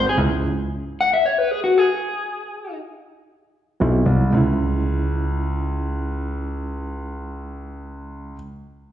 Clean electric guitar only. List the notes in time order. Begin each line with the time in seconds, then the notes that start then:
0.09 G#4
1.01 F#5
1.14 E5
1.26 C#5
1.38 B4
1.51 G#4
1.64 F#4
1.78 G#4